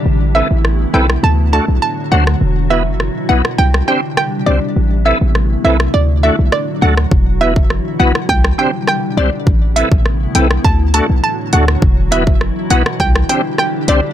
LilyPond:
<<
  \new Staff \with { instrumentName = "Synth pluck" } { \time 4/4 \key e \minor \tempo 4 = 102 r8 e''16 r8. g''16 r16 a''16 r16 a''16 r16 a''16 r16 fis''16 r16 | r8 e''16 r8. fis''16 r16 g''16 r16 g''16 r16 g''16 r16 d''16 r16 | r8 e''16 r8. e''16 r16 d''16 r16 e''16 r16 d''16 r16 fis''16 r16 | r8 e''16 r8. fis''16 r16 g''16 r16 g''16 r16 g''16 r16 d''16 r16 |
r8 e''16 r8. g''16 r16 a''16 r16 a''16 r16 a''16 r16 fis''16 r16 | r8 e''16 r8. fis''16 r16 g''16 r16 g''16 r16 g''16 r16 d''16 r16 | }
  \new Staff \with { instrumentName = "Tonewheel organ" } { \time 4/4 \key e \minor r8 <c' e' a' b'>8 r8 <c' e' a' b'>8 r8 <a d' fis' a'>8 r8 <a d' fis' c''>8 | r8 <b e' fis' b'>8 r8 <b e' fis' b'>8 r8 <c' d' g' c''>8 r8 <c' d' g' c''>8 | r8 <c' e' a' b'>8 r8 <c' e' a' b'>8 r8 <a d' fis' a'>8 r8 <a d' fis' a'>8 | r8 <b e' fis' b'>8 r8 <b e' fis' b'>8 r8 <c' d' g' c''>8 r8 <c' d' g' c''>8 |
r8 <c' e' a' b'>8 r8 <c' e' a' b'>8 r8 <a d' fis' a'>8 r8 <a d' fis' a'>8 | r8 <b e' fis' b'>8 r8 <b e' fis' b'>8 r8 <c' d' g' c''>8 r8 <c' d' g' c''>8 | }
  \new Staff \with { instrumentName = "Ambient pad" } { \clef bass \time 4/4 \key e \minor c2 fis2~ | fis2 c2~ | c2 <fis fis'>2~ | <fis fis'>2 c2~ |
c2 <fis fis'>2~ | <fis fis'>2 c2 | }
  \new Staff \with { instrumentName = "808-style bass" } { \clef bass \time 4/4 \key e \minor a,,8. a,,8. b,,8 d,8. b,,16 r8 d,8 | e,,8. fis,,8 r16 b,,16 r16 c,8 r4 c,16 r16 | a,,8. a,,8. b,,8 d,8. b,,16 r8 d,8 | e,,8. fis,,8 r16 b,,16 r16 c,8 r4 c,16 r16 |
a,,8. a,,8. b,,8 d,8. b,,16 r8 d,8 | e,,8. fis,,8 r16 b,,16 r16 c,8 r4 c,16 r16 | }
  \new DrumStaff \with { instrumentName = "Drums" } \drummode { \time 4/4 r4 ss8. ss16 r4 r8. ss16 | r4 ss8. ss16 r16 ss8. ss4 | r4 ss8. ss16 r4 ss8. ss16 | bd8. bd16 ss8. ss16 bd16 ss8. ss4 |
bd8 hh16 bd16 ss8 hh16 ss16 bd8 hh8 r8 hh16 ss16 | bd8 hh16 bd16 ss8 hh16 ss16 bd16 ss16 hh8 ss8 hh8 | }
>>